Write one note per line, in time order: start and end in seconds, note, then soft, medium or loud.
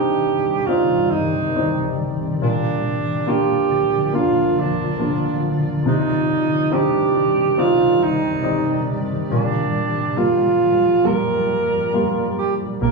0.00 2.38 C3 soft
0.00 2.39 C3 medium
0.00 2.39 D#3 medium
0.00 2.38 G3 medium
0.00 0.66 C4 soft
0.00 0.66 D4 soft
0.00 0.66 D#4 soft
0.00 0.68 G4 medium
0.00 2.39 G4 medium
0.00 12.78 D5 medium
0.67 1.53 C4 soft
0.67 1.54 D#4 soft
0.67 1.12 F4 medium
0.67 1.53 D5 soft
1.11 1.98 D#4 medium
1.55 2.39 C4 soft
1.55 2.40 D#4 soft
1.55 2.40 D5 soft
2.42 5.82 A#2 soft
2.42 5.83 A#2 medium
2.42 5.83 D3 medium
2.42 5.83 F3 medium
2.42 3.30 D4 medium
2.42 5.83 F4 medium
3.27 4.11 A#3 soft
3.27 4.11 D4 soft
3.27 4.12 F4 soft
3.27 4.14 G4 medium
4.13 4.97 A#3 soft
4.13 4.97 D4 soft
4.13 4.98 F4 soft
4.13 4.61 F4 medium
4.60 5.44 D4 medium
4.99 5.83 A#3 soft
4.99 5.83 D4 soft
4.99 5.83 F4 soft
5.86 9.26 C3 medium
5.86 9.27 C3 medium
5.86 9.27 D#3 medium
5.86 12.78 G3 medium
5.86 6.74 D#4 medium
5.86 12.78 G4 medium
6.71 7.55 C4 soft
6.71 7.55 D4 soft
6.71 7.55 D#4 soft
6.71 7.61 G4 medium
7.58 8.41 C4 soft
7.58 8.42 D#4 soft
7.58 8.04 F4 medium
7.58 8.41 D5 soft
8.03 8.88 D#4 medium
8.43 9.28 C4 soft
8.43 9.28 D#4 soft
8.43 9.28 D5 soft
9.31 12.79 A#2 medium
9.31 12.78 A#2 soft
9.31 12.79 F3 medium
9.31 10.19 D4 medium
10.17 11.02 G3 soft
10.17 11.02 A#3 soft
10.17 11.07 F4 medium
10.17 11.02 F4 soft
11.04 11.91 G3 soft
11.04 11.91 A#3 soft
11.04 11.91 F4 soft
11.04 12.38 A#4 medium
11.93 12.79 G3 soft
11.93 12.79 A#3 soft
11.93 12.80 F4 soft
12.38 12.54 G4 medium
12.82 12.92 A#1 medium
12.82 12.92 A#3 medium
12.82 12.92 A#4 medium